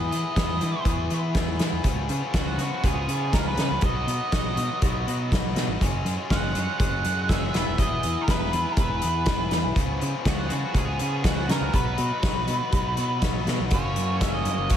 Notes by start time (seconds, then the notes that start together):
Already playing: E2 E3 B3 E4 G#4 D#5
0.11 E3 B3 E4 G#4, closed hi-hat
0.35 E2 E3 B3 E4 G#4, kick, snare, closed hi-hat
0.61 E3 B3 E4 G#4, closed hi-hat
0.85 E2 E3 B3 E4 G#4, kick, closed hi-hat
1.10 E3 B3 E4 G#4, closed hi-hat
1.34 E2 E3 B3 E4 G#4, kick, snare, closed hi-hat
1.59 E3 B3 E4 G#4, snare, closed hi-hat
1.72 E2
1.83 C#2 F3 B3 C#4 G#4, kick, closed hi-hat
2.09 C#3 B3 C#4 G#4, closed hi-hat
2.33 C#2 F3 B3 C#4 G#4, kick, snare, closed hi-hat
2.37 F#4
2.57 C#3 B3 C#4 G#4, closed hi-hat
2.62 F3
2.83 C#2 F3 B3 C#4 G#4, kick, closed hi-hat
3.08 C#3 F3 B3 C#4 G#4, closed hi-hat
3.33 C#2 F3 B3 C#4 A#4, kick, snare, closed hi-hat
3.37 G#4
3.48 B4
3.57 C#3 C#4 G#4, snare, closed hi-hat
3.62 B3
3.71 C#2
3.81 B1 F#3 B3 D#5, kick, closed hi-hat
3.85 D#4 F#4
4.07 B2 D#4 F#4, closed hi-hat
4.12 B3
4.32 B1 F#3 B3 D#4 F#4, kick, snare, closed hi-hat
4.56 B2 F#3 B3 D#4 F#4, closed hi-hat
4.82 B1 F#3 B3 D#4 F#4, kick, closed hi-hat
5.07 B2 F#3 B3 D#4 F#4, closed hi-hat
5.31 B1 F#3 B3 D#4 F#4, kick, snare, closed hi-hat
5.55 B2 B3 D#4 F#4, snare, closed hi-hat
5.67 G#1
5.81 F#1 F#3 G#3 C#4 G#4, kick, closed hi-hat
6.05 F#2 G#3 C#4 G#4, closed hi-hat
6.30 F#1 F#3 G#3 C#4 G#4 F#5, kick, snare, closed hi-hat
6.55 F#2 F#3 G#3 C#4 G#4, closed hi-hat
6.79 F#1 F#3 G#3 C#4 G#4 F#5, kick, closed hi-hat
7.04 F#2 F#3 G#3 C#4 G#4, closed hi-hat
7.29 F#1 F#3 G#3 C#4 G#4 E5, kick, snare, closed hi-hat
7.53 E1 E3 B3 E4 G#4, snare, closed hi-hat
7.68 E1
7.78 E1 E3 B3 E4 G#4 D#5, kick, closed hi-hat
8.03 E2 B3 E4 G#4, closed hi-hat
8.21 A#4
8.27 E1 E3 B3 E4 G#4 B4, kick, snare, closed hi-hat
8.52 E2 E3 B3 E4 G#4, closed hi-hat
8.72 A#4
8.77 E1 E3 B3 E4 G#4 B4, kick, closed hi-hat
9.02 E2 E3 B3 E4 G#4, closed hi-hat
9.26 E1 E3 B3 E4 G#4, kick, snare, closed hi-hat
9.51 E2 B3 E4 G#4, snare, closed hi-hat
9.65 B1
9.75 C#2 F3 B3 C#4 G#4, kick, closed hi-hat
10.00 C#3 B3 C#4 G#4, closed hi-hat
10.24 C#2 F3 B3 C#4 G#4, kick, snare, closed hi-hat
10.29 F#4
10.49 C#3 F3 B3 C#4 G#4, closed hi-hat
10.73 C#2 F3 B3 C#4 G#4, kick, closed hi-hat
10.78 G#4
10.99 C#3 F3 B3 C#4 G#4, closed hi-hat
11.23 C#2 F3 B3 C#4 F#4 G#4, kick, snare, closed hi-hat
11.48 C#3 B3 C#4 G#4 A#4, snare, closed hi-hat
11.61 C#2
11.72 B1 F#3 B3 D#4 F#4 B4, kick, closed hi-hat
11.98 B2 B3 D#4 F#4, closed hi-hat
12.23 B1 F#3 B3 D#4 F#4, kick, snare, closed hi-hat
12.48 B2 F#3 B3 D#4 F#4, closed hi-hat
12.72 B1 F#3 B3 D#4 F#4, kick, closed hi-hat
12.97 B2 F#3 B3 D#4 F#4, closed hi-hat
13.22 B1 F#3 B3 D#4 F#4, kick, snare, closed hi-hat
13.46 B2 B3 D#4 F#4, snare, closed hi-hat
13.60 B1
13.71 F#1 F#3 A#3 C#4 C#5, kick, closed hi-hat
13.75 C#4 F#4
13.96 F#2, closed hi-hat
14.21 F#1 E5, kick, snare, closed hi-hat
14.34 D#5
14.45 F#2, closed hi-hat
14.58 F#1
14.69 F#2 F#3 A#3 C#4 F#4 C#5, kick, closed hi-hat